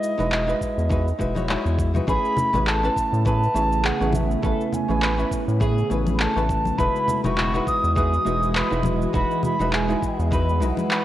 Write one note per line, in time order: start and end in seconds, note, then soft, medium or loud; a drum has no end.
0.00 0.14 G#3 medium
0.00 0.14 D#4 medium
0.00 0.15 E4 medium
0.00 0.15 F#4 medium
0.00 0.15 B4 loud
0.00 1.50 D#5 loud
0.00 shaker medium
0.17 0.54 E1 medium
0.17 0.44 G#3 medium
0.17 0.44 D#4 medium
0.17 0.44 E4 medium
0.17 0.44 F#4 medium
0.17 0.45 B4 loud
0.17 high conga medium
0.17 shaker soft
0.32 clap loud
0.32 shaker soft
0.47 0.87 G#3 medium
0.47 0.87 D#4 medium
0.47 0.87 E4 medium
0.47 0.88 F#4 medium
0.47 0.88 B4 loud
0.47 shaker soft
0.61 kick medium
0.61 shaker medium
0.78 1.13 E2 medium
0.78 shaker soft
0.89 1.06 G#3 medium
0.89 1.06 D#4 medium
0.89 1.06 E4 medium
0.89 1.07 F#4 medium
0.89 1.07 B4 loud
0.89 kick loud
0.89 shaker soft
1.08 shaker soft
1.19 1.57 E1 medium
1.19 1.33 G#3 medium
1.19 1.34 D#4 medium
1.19 1.34 E4 medium
1.19 1.34 F#4 medium
1.19 1.34 B4 medium
1.19 kick medium
1.19 shaker medium
1.35 1.45 G#3 medium
1.35 1.46 D#4 medium
1.35 1.46 E4 medium
1.35 1.46 F#4 medium
1.35 1.47 C#5 medium
1.35 high conga medium
1.35 shaker soft
1.48 1.91 G#3 loud
1.48 1.91 D#4 medium
1.48 1.91 E4 medium
1.48 1.91 F#4 medium
1.48 1.92 C#5 loud
1.48 clap medium
1.48 shaker soft
1.66 2.01 E2 medium
1.66 shaker soft
1.79 kick loud
1.79 shaker medium
1.94 2.04 G#3 medium
1.94 2.05 D#4 medium
1.94 2.05 E4 medium
1.94 2.05 F#4 medium
1.94 2.05 B4 medium
1.94 high conga medium
1.94 low conga medium
1.94 shaker soft
2.07 2.19 A1 loud
2.07 6.75 C#3 medium
2.07 2.50 A3 medium
2.07 6.75 A3 medium
2.07 6.75 B3 medium
2.07 2.50 C#4 medium
2.07 2.50 E4 medium
2.07 2.35 G#4 loud
2.07 2.50 G#4 medium
2.07 2.51 B4 loud
2.07 4.41 E5 loud
2.07 2.69 B5 loud
2.07 kick loud
2.07 shaker soft
2.25 shaker soft
2.37 low conga loud
2.37 shaker medium
2.53 2.89 A1 loud
2.53 2.79 A3 medium
2.53 2.79 C#4 medium
2.53 2.80 E4 medium
2.53 2.80 G#4 medium
2.53 2.80 B4 loud
2.53 high conga medium
2.53 low conga medium
2.53 shaker soft
2.67 2.84 A4 medium
2.67 3.26 A5 loud
2.67 clap loud
2.67 shaker soft
2.83 3.22 A3 medium
2.83 3.23 C#4 medium
2.83 3.23 E4 medium
2.83 3.23 B4 loud
2.83 3.23 A5 medium
2.83 shaker soft
2.96 kick medium
2.96 shaker medium
3.13 3.48 A2 medium
3.13 shaker soft
3.25 3.41 A3 loud
3.25 3.42 C#4 medium
3.25 3.42 E4 medium
3.25 3.42 G#4 medium
3.25 3.54 B4 medium
3.25 3.42 B4 loud
3.25 3.87 A5 loud
3.25 kick loud
3.25 shaker soft
3.43 shaker soft
3.54 3.92 A1 medium
3.54 3.97 A3 medium
3.54 3.97 C#4 medium
3.54 3.97 E4 medium
3.54 3.97 G#4 medium
3.54 3.98 B4 medium
3.54 shaker medium
3.72 shaker soft
3.84 4.11 G#4 loud
3.84 4.16 F#5 medium
3.84 clap loud
3.84 shaker soft
4.00 4.36 A1 loud
4.00 4.40 A3 medium
4.00 4.40 C#4 medium
4.00 4.41 E4 medium
4.00 4.41 G#4 medium
4.00 4.41 B4 medium
4.00 shaker soft
4.13 4.44 E5 medium
4.13 high conga medium
4.13 low conga medium
4.13 shaker medium
4.31 shaker soft
4.42 4.54 A1 loud
4.42 4.85 A3 medium
4.42 4.85 C#4 medium
4.42 4.85 E4 medium
4.42 4.61 A4 medium
4.42 4.86 B4 loud
4.42 4.75 E5 medium
4.42 4.86 G#5 medium
4.42 kick loud
4.42 shaker soft
4.61 shaker soft
4.72 5.32 G#5 medium
4.72 low conga medium
4.72 shaker medium
4.88 5.24 A1 medium
4.88 5.14 A3 medium
4.88 5.15 C#4 medium
4.88 5.15 E4 medium
4.88 5.15 G#4 medium
4.88 5.15 B4 loud
4.88 high conga medium
4.88 shaker soft
5.02 5.30 B4 medium
5.02 clap loud
5.02 shaker soft
5.17 5.57 A3 medium
5.17 5.58 C#4 medium
5.17 5.58 E4 medium
5.17 5.58 B4 loud
5.17 5.58 G#5 medium
5.17 shaker soft
5.31 kick medium
5.31 shaker medium
5.48 5.83 A2 medium
5.48 shaker soft
5.60 5.77 A3 medium
5.60 5.77 C#4 medium
5.60 5.77 E4 medium
5.60 5.88 G#4 loud
5.60 5.77 G#4 medium
5.60 5.78 B4 loud
5.60 kick loud
5.60 shaker soft
5.78 shaker soft
5.90 6.27 A1 medium
5.90 6.32 A3 medium
5.90 6.32 C#4 medium
5.90 6.33 E4 medium
5.90 6.33 G#4 medium
5.90 6.33 B4 medium
5.90 shaker medium
6.07 high conga medium
6.07 shaker soft
6.14 6.22 B5 medium
6.20 6.37 A4 medium
6.20 6.80 A5 medium
6.20 clap loud
6.20 shaker soft
6.36 6.71 A1 loud
6.36 6.75 A3 medium
6.36 6.76 C#4 medium
6.36 6.76 E4 medium
6.36 6.76 B4 medium
6.36 6.76 A5 medium
6.36 shaker soft
6.49 kick loud
6.49 shaker medium
6.65 high conga medium
6.65 shaker soft
6.78 6.89 E1 loud
6.78 11.05 E3 medium
6.78 7.20 G#3 loud
6.78 11.05 G#3 medium
6.78 7.21 D#4 medium
6.78 7.21 E4 medium
6.78 9.12 F#4 medium
6.78 7.21 F#4 medium
6.78 7.07 B4 medium
6.78 7.21 B4 loud
6.78 11.05 D#5 medium
6.78 7.24 B5 loud
6.78 kick loud
6.78 shaker soft
6.96 shaker soft
7.08 low conga medium
7.08 shaker medium
7.24 7.60 E1 loud
7.24 7.50 G#3 medium
7.24 7.50 D#4 medium
7.24 7.50 E4 medium
7.24 7.51 F#4 medium
7.24 7.51 B4 loud
7.24 7.64 C#6 loud
7.24 high conga medium
7.24 low conga loud
7.24 shaker soft
7.37 7.64 F#4 loud
7.37 clap loud
7.37 shaker soft
7.53 7.93 G#3 medium
7.53 7.93 D#4 medium
7.53 7.93 E4 medium
7.53 7.94 F#4 medium
7.53 7.94 B4 loud
7.53 shaker soft
7.67 7.94 D#6 loud
7.67 kick medium
7.67 shaker medium
7.83 8.19 E2 medium
7.83 shaker soft
7.95 8.12 G#3 loud
7.95 8.12 D#4 medium
7.95 8.13 E4 medium
7.95 8.13 F#4 medium
7.95 8.14 G#4 medium
7.95 8.13 B4 loud
7.95 8.80 D#6 loud
7.95 kick loud
7.95 shaker soft
8.13 shaker soft
8.25 8.63 E1 medium
8.25 8.67 G#3 medium
8.25 8.67 D#4 medium
8.25 8.68 E4 medium
8.25 8.68 F#4 medium
8.25 8.68 B4 medium
8.25 shaker medium
8.43 shaker soft
8.55 8.83 B4 medium
8.55 clap loud
8.55 shaker soft
8.70 9.07 E1 loud
8.70 9.10 G#3 medium
8.70 9.11 D#4 medium
8.70 9.11 E4 medium
8.70 9.11 F#4 medium
8.70 9.11 B4 medium
8.70 shaker soft
8.83 high conga loud
8.83 low conga medium
8.83 shaker medium
9.02 shaker soft
9.13 9.25 E1 loud
9.13 9.55 G#3 medium
9.13 9.56 D#4 medium
9.13 9.56 E4 medium
9.13 9.41 F#4 loud
9.13 9.56 F#4 medium
9.13 9.57 B4 loud
9.13 11.05 F#5 medium
9.13 9.42 B5 loud
9.13 kick loud
9.13 shaker soft
9.31 shaker soft
9.43 9.71 B5 loud
9.43 low conga medium
9.43 shaker medium
9.59 9.95 E1 loud
9.59 9.85 G#3 medium
9.59 9.85 D#4 medium
9.59 9.86 E4 medium
9.59 9.86 F#4 medium
9.59 9.86 B4 loud
9.59 high conga medium
9.59 shaker soft
9.73 9.90 G#4 medium
9.73 10.28 G#5 medium
9.73 clap medium
9.73 shaker soft
9.88 10.28 G#3 loud
9.88 10.28 D#4 medium
9.88 10.28 E4 medium
9.88 10.29 F#4 medium
9.88 10.29 B4 loud
9.88 shaker soft
10.02 kick medium
10.02 shaker medium
10.19 10.63 E2 medium
10.19 shaker soft
10.31 10.47 G#3 loud
10.31 10.48 D#4 medium
10.31 10.48 E4 medium
10.31 10.48 F#4 medium
10.31 10.60 B4 medium
10.31 10.48 B4 loud
10.31 kick loud
10.31 shaker soft
10.49 shaker soft
10.60 10.72 B1 loud
10.60 11.03 G#3 medium
10.60 11.03 D#4 medium
10.60 11.03 E4 medium
10.60 11.03 F#4 medium
10.60 11.04 B4 medium
10.60 shaker medium
10.77 high conga loud
10.77 shaker soft
10.91 11.05 B4 loud
10.91 clap medium
10.91 shaker soft